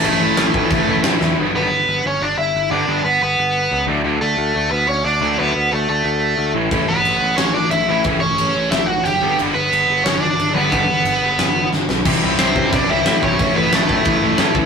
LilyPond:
<<
  \new Staff \with { instrumentName = "Overdriven electric guitar" } { \time 4/4 \key g \lydian \tempo 4 = 180 <a a'>2. r4 | r8 <b b'>4. <cis' cis''>8 <d' d''>8 <e' e''>4 | <d' d''>4 <b b'>8 <b b'>2 r8 | r8 <a a'>4. <b b'>8 <cis' cis''>8 <d' d''>4 |
<b b'>4 <a a'>8 <a a'>2 r8 | r8 <b b'>4. <cis' cis''>8 <d' d''>8 <e' e''>4 | r8 <cis' cis''>4. <e' e''>8 <fis' fis''>8 <g' g''>4 | r8 <b b'>4. <cis' cis''>8 <d' d''>4 <b b'>8~ |
<b b'>2. r4 | r4 <c' c''>4 <d' d''>8 <e' e''>4 <cis' cis''>8~ | <cis' cis''>8 <b b'>8 <a a'>2~ <a a'>8 r8 | }
  \new Staff \with { instrumentName = "Distorted electric guitar" } { \time 4/4 \key g \lydian <a, e a cis' e'>8 <a, e a cis' e'>8 <a, e a cis' e'>8 <a, e a cis' e'>8 <a, e a cis' e'>8 <a, e a cis' e'>8 <a, e a cis' e'>8 <a, e a cis' e'>8 | <g, d g b d'>8 <g, d g b d'>8 r2. | <g, d g b d'>8 <g, d g b d'>8 r2 r8 <d fis a d'>8 | <d fis a d'>8 r2. <d fis a d'>8 |
<d fis a d'>8 r2. <a, e a cis' e'>8 | <a, e a cis' e'>8 r2. <a, e a cis' e'>8 | <a, e a cis' e'>8 r2. <g, d g b d'>8 | <g, d g b d'>8 r2. <g, d g b d'>8 |
<g, d g b d'>8 r2. r8 | <c e g c' e'>8 <c e g c' e'>8 <c e g c' e'>8 <c e g c' e'>8 <c e g c' e'>8 <c e g c' e'>8 <c e g c' e'>8 <c e g c' e'>8 | <a, e a cis' e'>8 <a, e a cis' e'>8 <a, e a cis' e'>8 <a, e a cis' e'>8 <a, e a cis' e'>8 <a, e a cis' e'>8 <a, e a cis' e'>8 <a, e a cis' e'>8 | }
  \new Staff \with { instrumentName = "Picked electric bass" } { \clef bass \time 4/4 \key g \lydian a,,8 a,,8 a,,8 a,8 a,,8 a,,8 g,8 e,8 | g,,8 g,,8 g,,8 g,,8 g,,8 g,,8 g,,8 g,,8 | g,,8 g,,8 g,,8 g,,8 g,,4 cis,8 d,8 | d,8 d,8 d,8 d,8 d,8 d,8 d,8 d,8 |
d,8 d,8 d,8 d,8 d,4 d,8 a,,8 | a,,8 a,,8 a,,8 a,,8 a,,8 a,,8 a,,8 a,,8 | a,,8 a,,8 a,,8 a,,8 a,,4 fis,,8 g,,8 | g,,8 g,,8 g,,8 g,,8 g,,8 g,,8 g,,8 g,,8 |
g,,8 g,,8 g,,8 g,,8 g,,4 g,,8 b,,8 | c,8 c,8 c,8 c8 c,8 c,8 a,8 b,,8 | a,,8 a,,8 a,,8 a,8 a,,8 a,,8 g,8 cis,8 | }
  \new DrumStaff \with { instrumentName = "Drums" } \drummode { \time 4/4 cymc4 <cymc sn>8 bd8 <cymc bd>4 <cymc sn>8 sn8 | r4 r4 r4 r4 | r4 r4 r4 r4 | r4 r4 r4 r4 |
r4 r4 r4 r4 | <cymc bd>4 cymc4 <cymc sn>4 cymc4 | <cymc bd>4 cymc4 <cymc sn>4 cymc4 | cymc4 cymc4 <cymc sn>4 cymc4 |
<cymc bd>4 cymc4 <cymc sn>4 sn8 sn8 | <cymc bd>4 <cymc sn>8 bd8 <cymc bd>4 <cymc sn>8 bd8 | <cymc bd>4 <cymc sn>8 bd8 <cymc bd>4 <cymc sn>8 bd8 | }
>>